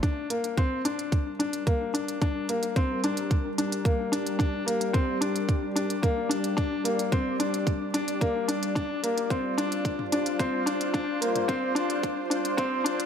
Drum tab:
HH |x-xxx-xxx-xxx-xx|x-xxx-xxx-xxx-xx|x-xxx-xxx-xxx-xx|x-xxx-xxx-xxx-xx|
T2 |----------------|----------------|----------------|----------------|
BD |o---o---o---o---|o---o---o---o---|o---o---o---o---|o---o---o---o---|

HH |x-xxx-xxx-xxx-xx|x-xxx-xxx-xxx-xx|
T2 |---------o------|---o------------|
BD |o---o---o---o---|o---o---o---o---|